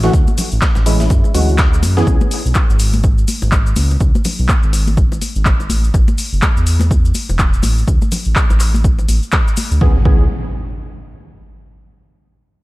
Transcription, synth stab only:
0.04 E3 A3 C#4 F#4
0.86 E3 G#3 C#4 E4
1.34 E3 G#3 C#4 F#4
1.97 E3 B3 C#4 G#4
9.81 E3 B3 C#4 G#4
10.05 E3 B3 C#4 G#4

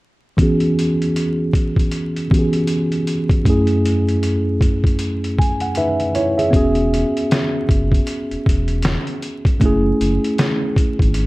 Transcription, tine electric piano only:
0.37 E3 B3 C#4
0.41 F#4 G#4
2.30 E3 B3 C#4 F#4 G4
2.39 G#4
3.44 F#2 A3 C#4
3.49 E4 G#4
5.39 G#5
5.61 F#5
5.77 D#4 B4 E5
6.15 E4 C#5
6.38 G#4 E5
6.51 B3 C#4 F#4
6.56 G#4
9.60 A3 C#4 E4
9.65 G#4

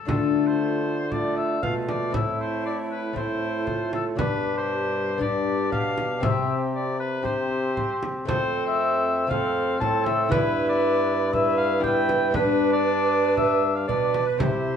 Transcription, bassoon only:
0.10 D3
1.63 B2
2.15 A2
4.19 G2
5.72 B2
6.24 C3
8.28 F2
9.81 A2
10.32 G2
12.36 G2
13.89 B2
14.41 C3

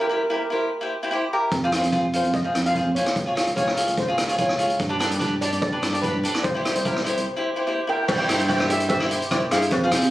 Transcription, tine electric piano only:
1.52 F2
1.83 F2
2.24 F2
2.55 F2
2.85 F2
2.96 D#2
3.16 C#2
3.47 C#2
3.88 C#2
4.18 C#2
4.50 C#2
4.59 C#2
4.80 G2
5.10 G2
5.52 G2
5.82 G2
6.14 G2
6.24 D2
6.45 C2
6.76 C2
7.17 C2
8.09 C2
8.29 G2
8.40 G2
9.31 C2
9.51 G2
9.71 F2
9.91 C3
10.03 C3

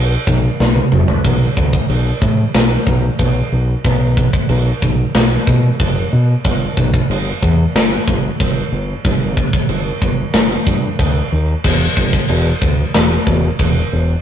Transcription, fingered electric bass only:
Already playing: B1
0.27 B1
0.60 B1
0.92 F#1
1.25 B1
1.57 D2
1.89 B1
2.22 A2
2.55 B1
2.87 B1
3.19 B1
3.52 B1
3.85 B1
4.49 B1
4.82 B1
5.15 B1
5.47 B2
5.80 F#1
6.13 B2
6.45 G1
6.77 B1
7.10 G1
7.43 E2
7.75 G1
8.08 G1
8.40 G1
8.72 G1
9.05 G1
9.69 G1
10.02 G1
10.34 G1
10.67 G2
10.99 D2
11.32 D#2
11.65 E1
11.97 G1
12.29 E1
12.62 D2
12.95 E1
13.27 E1
13.59 E1
13.93 E1

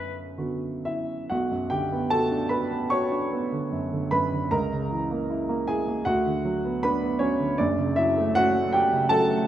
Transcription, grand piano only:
Already playing: F#2 D3 B3 F#4
0.38 D3 B3 F#4
0.85 E4 E5
1.30 B1 F#4 F#5
1.51 F#2
1.70 D3 G4 G5
1.92 B3
2.10 F#4 A4 A5
2.31 D4
2.49 F#4 B4 B5
2.71 B3
2.90 F#4 C#5 C#6
3.11 D4
3.32 B3
3.52 D3
3.72 F#2
3.92 D3
4.11 F#2 B4 B5
4.33 D3
4.51 C#2 A#4 A#5
4.73 C#3
4.92 E3
5.11 A#3
5.30 E4
5.49 A#3
5.68 E4 G#4 G#5
5.88 A#3
6.05 D2 F#4 F#5
6.26 D3
6.45 F#3
6.65 B3
6.83 D4 B4 B5
7.02 B3
7.19 F#3 C#4 C#5
7.40 D3
7.58 F#1 F#2 D4 D5
7.79 C#3
7.96 F#3 E4 E5
8.17 A3
8.35 C#4 F#4 F#5
8.55 A3
8.73 F#3 G4 G5
8.93 C#3
9.09 F#3 A4 A5
9.30 A3

